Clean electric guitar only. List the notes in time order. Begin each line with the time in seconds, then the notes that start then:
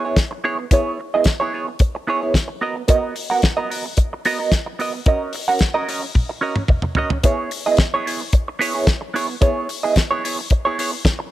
0.05 B3 E4 G#4 C#5
0.31 muted clean electric guitar stroke
0.44 B3 E4 G#4 C#5
0.59 muted clean electric guitar stroke
0.72 B3 E4 G#4 C#5
0.99 muted clean electric guitar stroke
1.14 B3 E4 G#4 D#5
1.40 B3 E4 G#4 C#5
1.53 B3 E4 G#4 C#5
1.68 muted clean electric guitar stroke
1.80 muted clean electric guitar stroke
1.95 muted clean electric guitar stroke
2.07 B3 E4 G#4 C#5
2.21 B3 E4 G#4 C#5
2.35 muted clean electric guitar stroke
2.48 muted clean electric guitar stroke
2.61 B3 F#4 A#4 D#5
2.76 muted clean electric guitar stroke
2.88 B3 F#4 A#4 D#5
3.15 muted clean electric guitar stroke
3.30 B3 F#4 A#4 F#5
3.42 muted clean electric guitar stroke
3.57 B3 F#4 A#4 D#5
3.70 B3 F#4 A#4 D#5
3.85 muted clean electric guitar stroke
3.97 muted clean electric guitar stroke
4.13 muted clean electric guitar stroke
4.25 B3 F#4 A#4 D#5
4.39 B3 F#4 A#4 D#5
4.52 muted clean electric guitar stroke
4.66 muted clean electric guitar stroke
4.79 B3 F#4 A#4 D#5
4.94 muted clean electric guitar stroke
5.06 C#4 F#4 A#4 D#5
5.35 muted clean electric guitar stroke
5.48 C#4 F#4 A#4 F#5
5.61 muted clean electric guitar stroke
5.74 C#4 F#4 A#4 D#5
5.88 C#4 F#4 A#4 D#5
6.03 muted clean electric guitar stroke
6.29 muted clean electric guitar stroke
6.41 C#4 F#4 A#4 D#5
6.56 muted clean electric guitar stroke
6.69 muted clean electric guitar stroke
6.83 muted clean electric guitar stroke
6.97 C#4 F#4 A#4 D#5
7.12 muted clean electric guitar stroke
7.24 B3 E4 G#4 C#5
7.51 muted clean electric guitar stroke
7.66 B3 E4 G#4 D#5
7.94 B3 E4 G#4 C#5
8.05 B3 E4 G#4 C#5
8.21 muted clean electric guitar stroke
8.33 muted clean electric guitar stroke
8.48 muted clean electric guitar stroke
8.59 B3 E4 G#4 C#5
8.74 B3 E4 G#4 C#5
9.01 muted clean electric guitar stroke
9.14 B3 E4 G#4 C#5
9.28 muted clean electric guitar stroke
9.41 B3 E4 G#4 C#5
9.69 muted clean electric guitar stroke
9.83 B3 E4 G#4 D#5
9.96 muted clean electric guitar stroke
10.11 B3 E4 G#4 C#5
10.24 B3 E4 G#4 C#5
10.39 muted clean electric guitar stroke
10.51 muted clean electric guitar stroke
10.65 B3 E4 G#4 C#5
10.78 B3 E4 G#4 C#5
10.92 muted clean electric guitar stroke
11.05 muted clean electric guitar stroke
11.19 muted clean electric guitar stroke